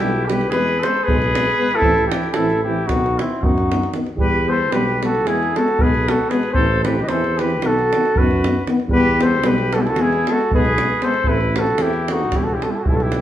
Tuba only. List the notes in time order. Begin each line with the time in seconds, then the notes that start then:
0.00 B1
0.53 E2
1.09 B1
1.83 A1
2.36 A1
2.90 B1
3.43 F#2
4.16 E2
4.71 B1
5.25 E2
5.80 B1
6.55 A1
7.09 E2
7.61 B1
8.17 F#2
8.88 E2
9.43 B1
9.98 E2
10.52 B1
11.25 A1
11.78 E2
12.33 E1
12.87 B1